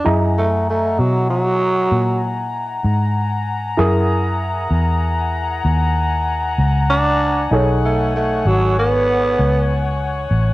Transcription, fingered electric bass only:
0.06 F#2
0.99 B2
1.92 A#2
2.84 G#2
3.79 F#2
4.71 E2
5.65 D#2
6.58 C#2
7.51 B1
8.45 G#1
9.39 C#2
10.31 A1

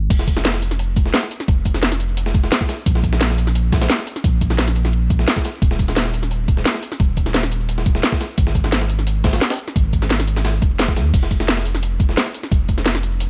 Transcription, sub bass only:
0.10 F1
1.48 F1
2.86 A#1
4.24 A#1
5.62 D#1
7.00 D#1
8.38 G#1
9.76 G#1
10.62 F1
10.97 D#2
11.14 F1
12.52 F1

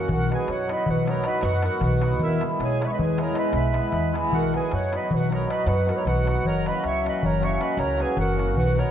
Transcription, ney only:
0.12 A#4
0.32 B4
0.50 C#5
0.73 D#5
0.90 B4
1.10 C#5
1.27 D#5
1.43 B4
1.64 A#4
1.85 B4
2.23 A#4
2.63 C#5
2.85 E5
2.93 D#5
3.02 B4
3.21 C#5
3.39 D#5
3.57 E5
4.35 A#4
4.56 B4
4.74 C#5
4.97 D#5
5.14 B4
5.33 C#5
5.52 D#5
5.68 B4
5.90 A#4
5.97 C#5
6.08 B4
6.47 C#5
6.67 D#5
6.86 E5
7.08 D#5
7.25 C#5
7.45 E5
7.63 D#5
7.79 C#5
8.02 B4
8.19 A#4
8.57 B4
8.79 C#5

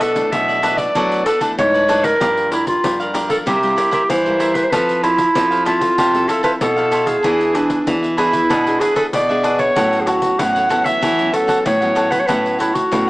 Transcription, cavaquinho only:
0.00 D4 A4 B4 D5
0.48 A4 B4 D5
0.62 D4 A4 B4 D5
0.77 A4 B4 D5
0.95 D4 A4 B4 D5
1.26 D4 A4 B4 D5
1.41 D4 A4 B4 D5
1.74 A4 B4 D5
1.88 D4 A4 B4 D5
2.04 A4 B4 D5
2.20 G4 A#4 D5 F5
2.51 G4 A#4 D5 F5
3.00 A#4 D5 F5
3.14 G4 A#4 D5 F5
3.29 A#4 D5 F5
3.46 E4 A#4 C5 E5
3.76 E4 A#4 C5 E5
3.91 E4 A#4 C5 E5
4.24 A#4 C5 E5
4.39 E4 A#4 C5 E5
4.54 A#4 C5 E5
4.72 A4 F5
5.03 A4 C5
5.51 A4 C5 F5
5.65 E4 A4 C5 F5
5.81 A4 C5 F5
5.98 A4 C5 F5
6.28 E4 A4 C5 F5
6.43 E4 A4 C5 F5
6.76 A4 C5 F5
6.91 E4 A4 C5 F5
7.06 A4 C5 F5
7.23 D4 G#4 B4 E5
7.54 D4 G#4 B4 E5
8.02 G#4 B4 E5
8.17 D4 G#4 B4 E5
8.32 G#4 B4 E5
8.49 D4 G#4 B4 E5
8.80 D4 G#4 B4 E5
8.96 D4 G#4 B4 E5
9.29 G#4 B4 E5
9.43 D4 G#4 B4 E5
9.59 G#4 B4 E5
9.76 F#4 A4 C#5 F#5
10.06 F#4 A4 C#5 F#5
10.55 A4 C#5 F#5
10.69 F#4 A4 C#5 F#5
10.84 A4 C#5 F#5
11.01 F#4 A4 C#5 F#5
11.32 F#4 A4 C#5 F#5
11.47 F#4 A4 C#5 F#5
11.81 A4 C#5 F#5
11.95 F#4 A4 C#5 F#5
12.11 A4 C#5 F#5
12.28 F#4 A4 C#5 F#5
12.58 F#4 A4 C#5 F#5

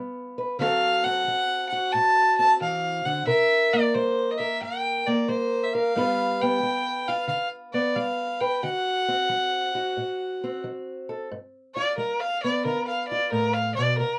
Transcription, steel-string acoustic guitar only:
Already playing: G3 B3 F4
0.38 B4
0.59 D3 F#3 C4 F#4 A4
1.06 C4
1.28 F#3
1.72 F#4
1.94 A2
2.39 C4
2.61 E3
3.05 D3
3.27 C3 A#4
3.73 A#3
3.95 G3
4.40 A#4
4.61 G2
5.07 A#3
5.29 G3
5.75 A#4
5.96 G2 G3 B3 F4 B4
6.43 B3
6.63 G3
7.09 F4
7.28 D3
7.74 B3
7.96 G3
8.41 B4
8.63 D3 F#4
9.08 C4
9.29 F#3
9.75 F#4
9.97 A2
10.44 C4
10.64 F#3
11.09 A4
11.31 G2
11.76 F4
11.98 G3
12.44 B3
12.65 D3 F4
13.12 F4
13.32 A2
13.78 B2
14.00 C3

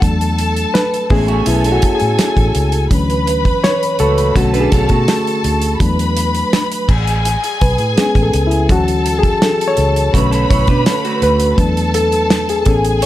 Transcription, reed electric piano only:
0.01 F#3 A3 D4
0.74 B4
1.10 A3 B3 C#4 G#4
1.47 E4
1.72 F#4
1.95 G#4
2.91 E3 F#3 C#4
3.64 C#5
4.00 A4
4.35 D3 A3 C#4 F#4
4.60 G#4
4.85 A4
5.80 F#3 A3 D4
7.62 B4
7.97 G#3 B3 C#4 G#4
8.22 A4
8.47 E4
8.69 E3 F#3 C#4 F#4
9.19 G#4
9.44 A4
9.68 C#5
10.13 D3 A3 C#4
11.23 B4
11.57 F#3 A3 D4
11.95 A4
12.50 G#4
12.66 B3 C#4 G#4 A4
13.03 C#5

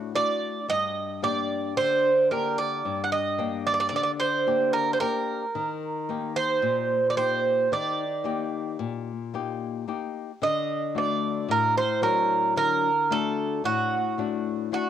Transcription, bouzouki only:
Already playing: F#4
0.15 D5
0.69 D#5
1.24 D5
1.77 C5
2.31 A#4
2.58 D5
3.04 F#5
3.12 D#5
3.67 D5
3.74 D5
3.80 D5
3.89 D5
3.96 D5
4.03 D5
4.20 C5
4.73 A#4
4.93 C5
5.00 A#4
6.36 C5
7.10 D5
7.17 C5
7.73 D5
10.43 D#5
10.98 D5
11.51 A#4
11.77 C5
12.03 A#4
12.57 A#4
13.12 A4
13.65 F#4
14.74 F#4

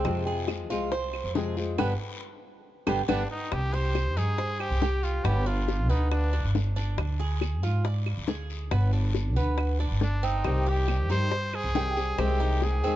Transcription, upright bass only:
0.05 F2
0.70 C2
1.24 F2
1.79 G1
2.87 G1
3.09 G1
3.52 C2
4.16 G2
4.70 C2
5.24 G1
5.89 D2
6.44 G1
6.98 D2
7.63 G#2
8.17 D2
8.71 G1
9.37 D2
9.91 G1
10.45 C2
11.10 G2
11.64 C2
12.18 C2
12.83 D#2

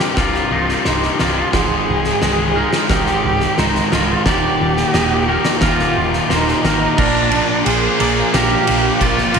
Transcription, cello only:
Already playing: G4
0.18 F4
0.86 D#4
1.21 F4
1.54 G#4
2.92 G4
3.58 D#4
3.92 F4
4.29 G4
5.63 F4
6.32 D#4
6.64 D#4
6.98 D4
7.65 G#4
8.33 G4
9.02 F4

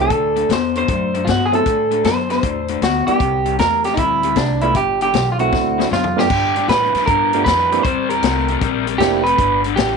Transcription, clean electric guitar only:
0.01 A4
0.53 C5
0.78 C5
1.25 F4
1.30 F#4
1.46 G#4
1.55 A4
2.05 C5
2.31 C5
2.84 F#4
3.07 G4
3.60 A#4
3.85 G4
3.94 D#4
3.98 E4
4.37 D4
4.62 E4
4.77 G4
5.02 G4
5.32 F4
5.40 F#4
5.93 F4
6.19 G4
6.69 B4
7.06 A#4
7.44 B4
7.83 C5
8.09 A#4
8.98 G4
9.24 B4
9.76 G4

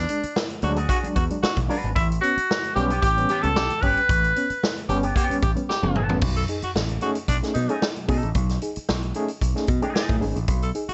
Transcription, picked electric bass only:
0.24 muted picked electric bass stroke
0.63 D2
1.04 muted picked electric bass stroke
1.16 E2
1.43 muted picked electric bass stroke
1.57 B1
1.84 G#1
1.96 A1
2.37 muted picked electric bass stroke
2.76 B1
3.03 A1
3.44 C#2
3.57 B1
3.83 G1
4.09 A1
4.50 muted picked electric bass stroke
4.89 G1
5.30 muted picked electric bass stroke
5.43 A1
5.83 F#1
5.96 G1
6.10 A1
6.22 B1
6.63 muted picked electric bass stroke
6.76 A1
7.29 B1
7.56 B2
8.09 B2
8.24 A1
8.35 B1
8.77 muted picked electric bass stroke
8.90 B1
9.42 B1
9.68 B2
10.09 A2
10.21 G#1
10.36 A1
10.48 B1
10.89 muted picked electric bass stroke

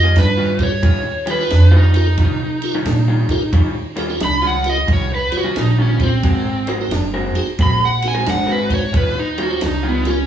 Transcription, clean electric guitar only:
0.03 D#3 G3 C#4 F4
0.37 D#3 G3 C#4 F4
0.83 D#3 G3 C#4 F4
1.04 muted clean electric guitar stroke
1.26 D#3 G3 C#4 F4
1.71 D#3 G3 C#4 F4
2.18 D#3 G3 C#4 F4
2.40 muted clean electric guitar stroke
2.75 D#3 G3 C#4 F4
3.08 D#3 G3 C#4 F4
3.53 D#3 G3 C#4 F4
3.75 muted clean electric guitar stroke
3.96 D#3 G3 C#4 F4
4.42 D#3 G3 C#4 F4
4.87 D#3 G3 C#4 F4
5.10 muted clean electric guitar stroke
5.44 D#3 G3 C#4 F4
5.79 D#3 G3 C#4 F4
6.24 G#3 C4 F#4 A#4
6.46 muted clean electric guitar stroke
6.68 G#3 C4 F#4 A#4
7.14 G#3 C4 F#4 A#4
7.59 G#3 C4 F#4 A#4
7.80 muted clean electric guitar stroke
8.14 G#3 C4 F#4 A#4
8.47 G#3 C4 F#4 A#4
8.93 D#3 G3 C#4 F4
9.15 muted clean electric guitar stroke
9.38 D#3 G3 C#4 F4
9.83 D#3 G3 C#4 F4

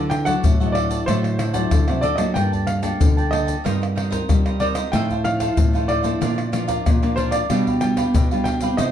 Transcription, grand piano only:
Already playing: D5
0.10 G5
0.25 F#5
0.66 D#5
0.72 D5
1.06 C5
2.01 D5
2.16 D#5
2.34 G5
2.67 F5
3.31 D#5
4.60 D5
4.75 D#5
4.92 G5
5.24 F5
5.88 D5
7.16 C5
7.31 D5
7.81 G5
8.44 G5
8.77 D#5

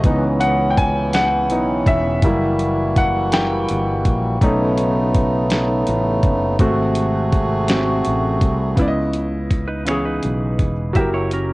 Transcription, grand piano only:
Already playing: D#5
0.05 E3 B3 D#4
0.40 F#5
0.70 G5
0.78 G#5
1.14 F#5
1.51 E3 B3 D#4
1.88 E5
2.24 G3 A#3 E4
2.98 F#5
3.33 G3 A#3 E4 G5
4.42 A3 C#4 D#4
6.60 A3 C4 F#4
7.69 A3 C4 F#4
8.76 C#3 B3 E4
8.81 D5
8.88 D#5
9.85 C#3 E3 B3
9.90 G#4
10.93 F#3 E4 G4
10.99 A#4

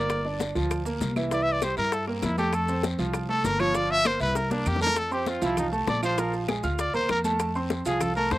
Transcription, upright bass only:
Already playing: G1
0.55 D2
1.01 C2
1.77 G2
2.23 F2
2.99 C2
3.44 G1
4.20 C2
4.66 F2
5.42 C2
5.87 A#1
6.63 D2
6.94 D#2
7.09 F2
7.86 C2
8.31 F2

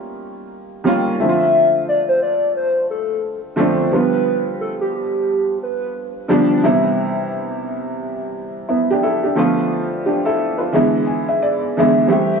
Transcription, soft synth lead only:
1.20 E5
1.89 D5
2.09 C5
2.22 D5
2.56 C5
2.90 A4
3.93 B4
4.61 A4
4.81 G4
4.95 G4
5.63 B4
12.11 E5

